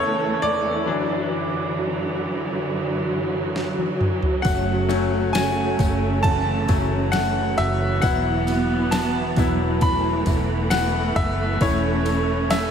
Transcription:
0.00 0.83 E2 medium
0.00 0.82 C#3 medium
0.00 0.83 C#3 medium
0.00 0.82 E3 medium
0.00 4.41 E3 medium
0.00 0.83 A3 medium
0.00 0.83 A3 loud
0.00 0.88 A4 loud
0.00 0.88 C#5 loud
0.42 3.96 D5 loud
0.86 4.41 F#2 medium
0.86 4.41 D3 medium
0.86 1.46 E3 medium
0.86 1.46 F#3 medium
0.86 6.20 F#3 medium
0.86 1.47 D4 medium
3.56 snare medium
3.78 high tom medium
4.00 mid tom loud
4.23 floor tom loud
4.42 5.76 F#1 loud
4.42 4.90 F#2 medium
4.42 8.00 C#3 medium
4.42 4.90 C#3 medium
4.42 4.90 F#3 loud
4.42 8.00 A3 medium
4.42 4.90 A3 loud
4.42 5.36 F#5 medium
4.42 kick loud
4.42 ride medium
4.42 tambourine medium
4.46 4.89 C#4 medium
4.46 4.88 F#4 loud
4.88 5.49 F#3 medium
4.88 5.34 F#3 soft
4.88 5.49 A3 medium
4.88 5.35 A3 medium
4.88 5.49 C#4 medium
4.88 5.35 C#4 medium
4.88 5.35 F#4 medium
4.88 ride medium
4.88 tambourine soft
5.33 5.79 F#2 medium
5.33 5.80 C#3 medium
5.33 5.80 F#3 medium
5.33 5.80 A3 medium
5.33 5.79 C#4 medium
5.33 5.78 F#4 loud
5.33 6.26 G#5 loud
5.33 snare loud
5.33 ride medium
5.33 tambourine loud
5.79 6.65 F#1 loud
5.79 6.23 F#3 soft
5.79 6.24 A3 medium
5.79 6.24 C#4 medium
5.79 6.24 F#4 medium
5.79 kick loud
5.79 ride medium
5.79 tambourine medium
6.23 12.71 E3 medium
6.23 6.69 F#3 medium
6.23 6.69 A3 medium
6.23 6.68 C#4 medium
6.23 6.67 F#4 medium
6.23 7.09 A5 loud
6.23 kick loud
6.23 ride medium
6.68 7.55 F#1 loud
6.68 7.10 F#3 medium
6.68 7.13 F#3 soft
6.68 7.10 A3 medium
6.68 7.14 A3 soft
6.68 7.10 C#4 medium
6.68 7.14 C#4 medium
6.68 7.14 F#4 medium
6.68 kick loud
6.68 ride medium
6.68 tambourine medium
7.12 8.03 F#2 medium
7.12 8.03 C#3 medium
7.12 8.03 F#3 medium
7.12 8.03 A3 medium
7.12 8.04 C#4 loud
7.12 8.04 F#4 loud
7.12 7.59 F#5 loud
7.12 snare loud
7.12 ride medium
7.12 tambourine medium
7.58 8.00 F#1 medium
7.58 8.04 E5 loud
7.58 snare soft
7.58 ride medium
8.02 9.34 E1 loud
8.02 8.48 E3 medium
8.02 11.57 F#3 medium
8.02 8.62 F#3 medium
8.02 9.80 B3 loud
8.02 8.63 B3 medium
8.02 8.48 B3 medium
8.02 8.63 E4 medium
8.02 8.48 E4 loud
8.02 8.47 F#4 loud
8.02 8.88 F#5 loud
8.02 kick loud
8.02 ride medium
8.02 tambourine medium
8.47 8.92 B3 soft
8.47 8.92 E4 medium
8.47 8.93 F#4 medium
8.47 ride medium
8.47 tambourine soft
8.91 9.37 E3 medium
8.91 9.38 B3 medium
8.91 9.38 E4 medium
8.91 9.36 F#4 loud
8.91 9.84 A5 loud
8.91 snare loud
8.91 ride medium
8.91 tambourine loud
9.36 10.23 E1 loud
9.36 9.78 F#3 medium
9.36 9.79 B3 medium
9.36 9.82 B3 medium
9.36 9.79 E4 medium
9.36 9.83 E4 medium
9.36 9.82 F#4 medium
9.36 kick loud
9.36 ride medium
9.36 tambourine medium
9.81 10.27 E3 medium
9.81 12.71 A3 loud
9.81 10.28 B3 medium
9.81 10.27 E4 medium
9.81 10.26 F#4 medium
9.81 10.75 B5 loud
9.81 kick loud
9.81 ride medium
9.81 tambourine soft
10.26 11.12 E1 loud
10.26 10.71 B3 soft
10.26 10.72 E4 medium
10.26 10.72 F#4 medium
10.26 kick loud
10.26 ride medium
10.26 tambourine soft
10.70 11.61 E3 medium
10.70 11.62 B3 medium
10.70 11.62 E4 loud
10.70 11.62 F#4 loud
10.70 11.17 F#5 loud
10.70 snare loud
10.70 ride medium
10.70 tambourine loud
11.16 11.58 F#1 loud
11.16 11.62 E5 loud
11.16 kick loud
11.16 snare soft
11.16 ride medium
11.16 tambourine soft
11.61 12.71 E1 loud
11.61 12.06 E3 medium
11.61 12.71 A3 medium
11.61 12.06 A3 medium
11.61 12.71 C#4 medium
11.61 12.71 C#4 loud
11.61 12.06 C#4 loud
11.61 12.71 E4 medium
11.61 12.05 A4 loud
11.61 12.54 C#5 loud
11.61 kick loud
11.61 ride medium
11.61 tambourine medium
12.05 12.50 A3 soft
12.05 12.51 C#4 medium
12.05 12.51 A4 medium
12.05 ride medium
12.05 tambourine soft
12.50 12.71 E3 medium
12.50 12.71 A3 loud
12.50 12.71 C#4 medium
12.50 12.71 A4 medium
12.50 12.71 E5 loud
12.50 snare loud
12.50 ride medium
12.50 tambourine loud

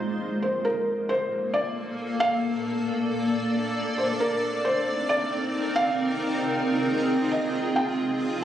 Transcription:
0.42 0.66 C5 medium
0.65 4.84 A#3 medium
0.65 1.11 A#4 medium
0.93 4.22 A4 medium
1.09 1.56 C5 loud
1.54 1.96 D5 loud
1.60 5.77 D5 medium
2.20 3.06 F5 loud
3.98 4.03 C5 medium
4.20 8.44 C4 medium
4.20 4.67 A#4 medium
4.38 6.57 D#4 medium
4.49 6.57 A#4 loud
4.65 5.07 C5 loud
5.09 5.51 D5 loud
5.76 6.61 F5 loud
5.88 7.77 G#4 medium
5.92 8.44 F4 loud
7.31 7.78 D#5 loud
7.76 8.44 A#3 medium
7.76 8.44 G5 loud
8.12 8.44 D5 loud

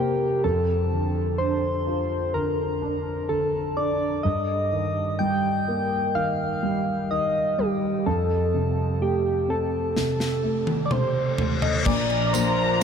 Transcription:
0.00 0.40 F2 medium
0.00 0.46 C3 soft
0.00 0.46 A#3 soft
0.00 0.46 C4 soft
0.00 0.45 G4 medium
0.44 4.21 F2 medium
0.44 1.38 A4 medium
0.92 2.33 D3 soft
1.38 2.80 D4 soft
1.38 2.36 C5 medium
1.87 3.73 F4 soft
2.34 3.28 D3 soft
2.34 3.31 A#4 medium
2.82 3.75 D4 soft
3.29 4.22 D3 soft
3.29 3.78 A4 medium
3.77 4.23 D4 soft
3.77 4.23 D5 medium
4.23 8.02 G2 medium
4.23 5.20 D#5 medium
4.72 6.14 D#3 soft
5.19 6.61 G3 soft
5.19 6.15 G5 loud
5.68 7.54 A#3 soft
6.15 7.09 D#3 soft
6.15 7.12 F5 loud
6.63 7.57 G3 soft
7.11 8.03 D#3 soft
7.11 7.60 D#5 medium
7.58 8.04 G3 soft
7.58 8.08 G4 medium
8.06 11.83 F2 medium
8.06 9.03 A4 medium
8.54 9.95 C3 soft
9.01 10.42 A3 soft
9.01 9.52 G4 medium
9.48 11.35 C4 soft
9.48 10.85 A4 medium
9.96 10.90 C3 soft
9.96 snare soft
9.96 reverse cymbal medium
10.20 snare soft
10.43 11.37 A3 soft
10.67 high tom medium
10.86 10.94 D5 medium
10.91 11.84 C3 soft
10.91 11.62 C5 medium
10.91 mid tom medium
11.38 11.85 A3 soft
11.38 floor tom medium
11.62 11.73 D#5 medium
11.62 floor tom medium
11.86 12.83 A#1 medium
11.86 12.83 A#2 medium
11.86 12.83 F3 medium
11.86 12.83 D4 medium
11.86 12.83 A#4 medium
11.86 12.27 D5 loud
11.86 12.83 A#5 loud
11.86 kick loud
11.86 crash medium
12.10 ride soft
12.27 12.35 D5 medium
12.33 12.83 F3 medium
12.33 12.81 A#3 medium
12.33 12.83 C5 medium
12.33 ride medium
12.33 tambourine medium

